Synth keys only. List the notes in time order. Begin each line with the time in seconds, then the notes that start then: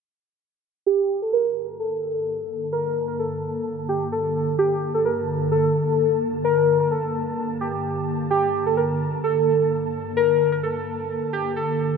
0.86 G4
1.22 A4
1.33 A#4
1.80 A4
2.73 A#4
3.08 A#4
3.19 A4
3.89 G4
4.12 A4
4.59 G4
4.94 A4
5.05 A#4
5.52 A4
6.45 A#4
6.80 A#4
6.91 A4
7.61 G4
8.31 G4
8.66 A4
8.77 A#4
9.24 A4
10.17 A#4
10.52 A#4
10.63 A4
11.33 G4
11.56 A4